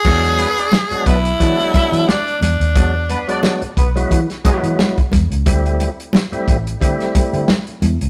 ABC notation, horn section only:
X:1
M:4/4
L:1/16
Q:"Swing 16ths" 1/4=89
K:Emix
V:1 name="Horn section"
z2 [B,B] [Dd] z2 [B,B] z3 [Ee] z [Dd]2 z2 | z2 [B,B] [Dd] z2 [B,B] z3 [G,G] z4 z | z16 |]